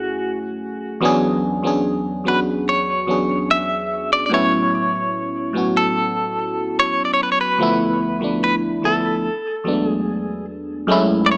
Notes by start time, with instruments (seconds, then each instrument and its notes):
Already playing: fm electric piano F#2 A3 C#4 E4 F#4 G#4, clean electric guitar F#4
1.01 fm electric piano E2 F#3 B3 C#4 D4
1.05 fm electric piano G#4
1.63 fm electric piano E2 F#3 B3 C#4 D4
1.67 fm electric piano G#4
2.24 fm electric piano E2 F#3 B3 C#4 D4
2.28 fm electric piano F#4, clean electric guitar B4
2.69 clean electric guitar C#5
3.07 fm electric piano E2 F#3 B3 C#4 D4
3.11 fm electric piano G#4
3.51 clean electric guitar E5
4.13 clean electric guitar D5
4.26 fm electric piano A2, clean electric guitar D5
4.31 fm electric piano F#3 B3 C#4 E4, clean electric guitar C#5
5.53 fm electric piano A2 F#3 B3 C#4
5.58 fm electric piano F#4
5.77 clean electric guitar A4
6.79 clean electric guitar C#5
7.05 clean electric guitar D5
7.14 clean electric guitar C#5
7.23 clean electric guitar B4
7.32 clean electric guitar C#5
7.41 clean electric guitar B4
7.58 fm electric piano D2 F3 A3 B3
7.63 fm electric piano E4
8.20 fm electric piano D2 F3 A3 B3
8.24 fm electric piano D4
8.44 clean electric guitar B4
8.82 fm electric piano D2 F3 A3 B3, clean electric guitar A4
8.86 fm electric piano E4
9.64 fm electric piano E2 F#3 G#3 B3
9.68 fm electric piano D4
9.73 fm electric piano A3
9.88 clean electric guitar G#4
10.87 fm electric piano F#2 G#3 A3 C#4
10.92 fm electric piano E4
11.26 clean electric guitar D5
11.31 clean electric guitar C#5